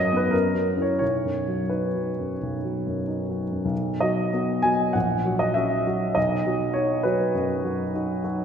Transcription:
grand piano
Already playing: F#2 F#3 D#5
0.12 B3 D#4
0.17 B4
0.31 F#2 A#4
0.55 F#3
0.77 C#4 E4
0.82 C#5
0.99 B1 C#5
1.25 F#2
1.48 F#3
1.70 D#4 B4
1.95 F#3
2.19 F#2
2.43 B1
2.65 F#3
2.87 F#2
3.08 D#4
3.29 F#3
3.51 F#2
3.65 B1
4.01 F#3 F#4 D#5
4.34 B3 F#4
4.62 F#3 F#4 G#5
4.93 A#1 F#5
5.25 F#3 F#4
5.39 D#5
5.54 C#4 F#4 E5
5.87 F#3 F#4
6.15 B1 D#5
6.47 F#3 F#4
6.74 D#4 F#4 C#5
7.03 F#3 F#4 B4
7.35 F#2
7.64 F#3 F#4
7.95 D#4 F#4
8.24 F#3 F#4

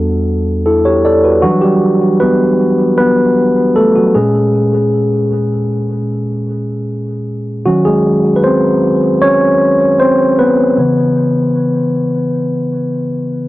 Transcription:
tine electric piano
Already playing: E2 G3 B3 D4 F#4 A4
0.66 E4 A4
0.85 G4 C#5
1.05 A4 D5
1.24 F#4 B4
1.42 E3 F#3 G3 D4 F#4
1.61 G3 G4
2.20 B3 B4
2.98 B3 B4
3.76 A3 A4
3.95 F#3 F#4
4.15 A#2 G#3 C#4 G#4
7.66 D#3 F#3 C#4 F#4
7.85 G#3 G#4
8.36 B4
8.44 C4 C5
9.22 C#4 C#5
10.00 C4 C5
10.39 B3 B4
10.78 C#3 E3 B3

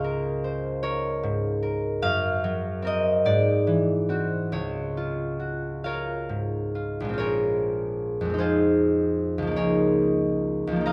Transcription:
harp
Already playing: C#2 G#4 C#5 F5
0.04 A#4
0.44 C5
0.83 A#4 C#5
1.23 G#2
1.63 A#4
2.02 F#2 F5
2.44 F#3
2.82 C4 A#4
2.87 D#5
3.25 G#2 D5
3.67 E3
4.09 C4 F#4
4.52 C#2 C#5
4.97 F4
5.40 F#4
5.84 F4 A#4 C#5 F5
6.29 G#2
6.75 F4
7.00 A#1
7.05 G#3
7.09 C4
7.14 F4
7.18 G#4 A#4 C#5
8.21 F2
8.25 G#3
8.30 C4
8.34 D#4
8.38 F4 G#4 C5
9.38 C#2
9.42 F3
9.47 A#3
9.52 D#4
9.56 G#4 A#4 C#5
10.67 C#2
10.72 F3
10.76 A#3
10.81 D#4
10.86 D#5 F5 A#5

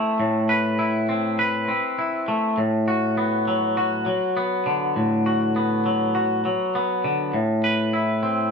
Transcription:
clean electric guitar
Already playing: A3 C4 E4 B4
0.20 A2
0.49 B4
0.79 E4
1.09 C4
1.39 B4
1.68 C4
1.99 E4
2.28 A3
2.58 A2
2.88 F#4
3.18 B3
3.48 F#3
3.77 F#4
4.06 F#3
4.37 B3
4.66 D3
4.96 A2
5.26 F#4
5.56 B3
5.86 F#3
6.15 F#4
6.45 F#3
6.75 B3
7.04 D3
7.34 A2
7.64 B4
7.93 E4
8.23 C4

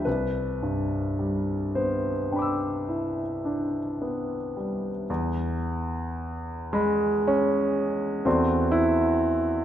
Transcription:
grand piano
0.05 C2 B4
0.63 G2
1.19 G3
1.75 B3 C5
2.32 D4 G5 B5
2.39 D6 E6
2.89 E4
3.45 D4
4.02 B3
4.57 G3
5.10 E2
6.73 G#3 D#5 B5
7.27 C#4
8.25 E2 C4 F#4 A4 D5 C6
8.72 E4

